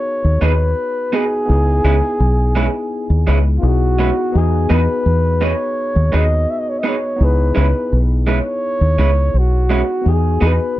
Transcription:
Already playing: tine electric piano B3 D#4 F#4 G#4, flugelhorn C#5
0.24 fingered electric bass D#2
0.41 fingered electric bass D#2, clean electric guitar B3 D#4 G#4 B4, flugelhorn B4
1.12 tine electric piano B3 D#4 F#4 G#4, clean electric guitar B3 D#4 G#4 B4, flugelhorn G#4
1.46 fingered electric bass C#2, tine electric piano B3 D#4 E4
1.51 tine electric piano G#4
1.84 fingered electric bass C#2, clean electric guitar G#3 C#4 E4 B4
2.20 fingered electric bass B1
2.55 clean electric guitar G#3 C#4 E4 B4
3.10 fingered electric bass D#2
3.27 fingered electric bass C#2, clean electric guitar G#3 C#4 E4 B4
3.58 tine electric piano B3, flugelhorn F4
3.62 fingered electric bass B1, tine electric piano D#4 E4 G#4, flugelhorn F#4
3.99 clean electric guitar G#3 C#4 E4 B4
4.32 fingered electric bass E2, tine electric piano B3 D#4 F#4
4.37 flugelhorn G#4, tine electric piano G#4
4.69 fingered electric bass E2, clean electric guitar B3 D#4 G#4 B4, flugelhorn B4
5.06 fingered electric bass E2
5.41 clean electric guitar B3 D#4 G#4 B4, flugelhorn C#5
5.96 fingered electric bass D#2
6.12 fingered electric bass D#2, tine electric piano B3 D#4 F#4 B4, clean electric guitar B3 D#4 G#4 B4
6.16 flugelhorn D#5
6.50 flugelhorn E5
6.60 flugelhorn D#5
6.69 flugelhorn C#5
6.79 flugelhorn D#5
6.83 clean electric guitar B3 D#4 G#4 B4
6.89 flugelhorn C#5
7.16 fingered electric bass C#2, tine electric piano B3 D#4 E4
7.22 tine electric piano G#4, flugelhorn B4
7.55 fingered electric bass C#2, clean electric guitar G#3 C#4 E4 B4
7.60 flugelhorn B4
7.93 fingered electric bass B1
8.27 clean electric guitar G#3 C#4 E4 B4
8.31 flugelhorn C#5
8.81 fingered electric bass D#2
8.98 fingered electric bass C#2, clean electric guitar G#3 C#4 E4 B4
9.34 fingered electric bass B1
9.38 flugelhorn F#4
9.70 clean electric guitar G#3 C#4 E4 B4
10.01 tine electric piano B3 D#4
10.05 fingered electric bass E2, tine electric piano F#4 G#4
10.10 flugelhorn G#4
10.41 fingered electric bass E2, clean electric guitar B3 D#4 G#4 B4
10.47 flugelhorn B4

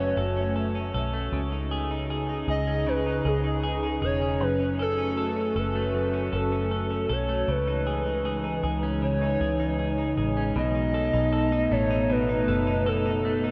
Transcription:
Already playing: fingered electric bass F#1, clean electric guitar F#2 A3 C#4 A4, ambient pad A3 C#4 F#4, soft synth lead C#5
0.17 fingered electric bass F#1, clean electric guitar A4
0.36 clean electric guitar C#4
0.56 clean electric guitar A4
0.75 clean electric guitar C#4
0.94 fingered electric bass B1, clean electric guitar A4
1.14 clean electric guitar A3
1.32 fingered electric bass C#2, ambient pad C#3 C#4 D#4 G#4, clean electric guitar C#3
1.52 clean electric guitar D#4
1.71 clean electric guitar G#4
1.91 clean electric guitar D#4
2.10 clean electric guitar G#4
2.29 clean electric guitar D#4
2.48 fingered electric bass C#2, clean electric guitar G#4, soft synth lead D#5
2.67 clean electric guitar C#4
2.87 clean electric guitar C#3, soft synth lead B4
3.06 clean electric guitar D#4
3.25 fingered electric bass C#2, clean electric guitar G#4, soft synth lead G#4
3.44 clean electric guitar D#4
3.63 clean electric guitar G#4
3.83 clean electric guitar D#4
4.02 fingered electric bass E1, clean electric guitar G#4, soft synth lead C#5
4.21 clean electric guitar C#4
4.40 fingered electric bass F#1, clean electric guitar F#2, ambient pad A3 F#4, soft synth lead B4
4.59 clean electric guitar C#4
4.79 clean electric guitar A4, soft synth lead A4
4.98 clean electric guitar C#4
5.17 clean electric guitar A4
5.36 clean electric guitar C#4
5.55 fingered electric bass F#1, clean electric guitar A4, soft synth lead B4
5.75 clean electric guitar A3
5.94 clean electric guitar F#2
6.14 clean electric guitar C#4
6.33 fingered electric bass F#1, clean electric guitar A4, soft synth lead A4
6.52 clean electric guitar C#4
6.71 clean electric guitar A4
6.90 clean electric guitar C#4
7.09 fingered electric bass B1, clean electric guitar A4, soft synth lead C#5
7.29 clean electric guitar A3
7.48 fingered electric bass C#2, ambient pad C#3 E3 G#3 D#4, clean electric guitar C#3, soft synth lead B4
7.67 clean electric guitar D#4
7.87 clean electric guitar G#4
8.06 clean electric guitar D#4
8.25 clean electric guitar G#4
8.44 clean electric guitar D#4
8.64 fingered electric bass C#2, clean electric guitar G#4
8.83 clean electric guitar C#4
9.02 clean electric guitar C#3, soft synth lead C#5
9.21 clean electric guitar D#4
9.41 fingered electric bass C#2, clean electric guitar G#4
9.60 clean electric guitar D#4
9.79 clean electric guitar G#4
9.98 clean electric guitar D#4
10.17 fingered electric bass A1, clean electric guitar G#4
10.37 clean electric guitar C#4
10.55 fingered electric bass B1, clean electric guitar B2, ambient pad A3 B3 D#4, soft synth lead D#5
10.75 clean electric guitar D#4
10.94 clean electric guitar A4
11.13 fingered electric bass B1, clean electric guitar D#4
11.33 clean electric guitar A4
11.52 clean electric guitar D#4
11.71 fingered electric bass A1, clean electric guitar A3, soft synth lead C#5
11.91 clean electric guitar D#4
12.04 soft synth lead C#5
12.10 clean electric guitar B2, soft synth lead B4
12.29 clean electric guitar D#4
12.48 fingered electric bass F#1, clean electric guitar A4
12.67 clean electric guitar D#4
12.86 clean electric guitar A4, soft synth lead A4
13.06 clean electric guitar D#4
13.25 clean electric guitar A3
13.44 clean electric guitar D#4

